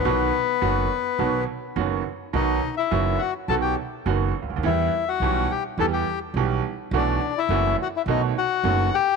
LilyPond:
<<
  \new Staff \with { instrumentName = "Bandoneon" } { \time 4/4 \key b \phrygian \tempo 4 = 105 <b b'>2~ <b b'>8 r4. | <dis' dis''>8. <e' e''>8. <fis' fis''>8 <a' a''>16 <g' g''>8 r4 r16 | <e' e''>8. <fis' fis''>8. <g' g''>8 <a' a''>16 <g' g''>8 r4 r16 | <d' d''>8. <e' e''>8. <fis' fis''>16 <e' e''>16 <dis' dis''>8 <fis' fis''>4 <g' g''>8 | }
  \new Staff \with { instrumentName = "Grand piano" } { \clef bass \time 4/4 \key b \phrygian <b,, b, dis fis b fis'>8 r8 <fis,, fis, dis fis b fis'>8 r8 <b,, b, dis fis b fis'>8 r8 <fis,, fis, dis fis b fis'>8 r8 | <b,, b, dis fis b fis'>8 r8 <fis,, fis, dis fis b fis'>8 r8 <b,, b, dis fis b fis'>8 r8 <fis,, fis, dis fis b fis'>8 r32 cis,32 d,32 dis,32 | <e, e g b g'>8 r8 <b,, b, e g b g'>8 r8 <e, e g b g'>8 r8 <b,, b, e g b g'>8 r8 | <b,, b, e a b fis'>8 r8 <fis,, fis, e a b fis'>8 r8 <b,, b, dis a b fis'>8 r8 <fis,, fis, dis a b fis'>8 r8 | }
  \new Staff \with { instrumentName = "Upright bass" } { \clef bass \time 4/4 \key b \phrygian b,,16. r8 r32 fis,,16. r8 r32 b,,16. r8 r32 fis,,16. r8 r32 | b,,16. r8 r32 fis,,16. r8 r32 b,,16. r8 r32 fis,,16. r16 cis,32 d,32 dis,32 | e,16. r8 r32 b,,16. r8 r32 e,16. r8 r32 b,,16. r8 r32 | b,,16. r8 r32 fis,,16. r8 r32 b,,16. r8 r32 fis,,16. r8 r32 | }
>>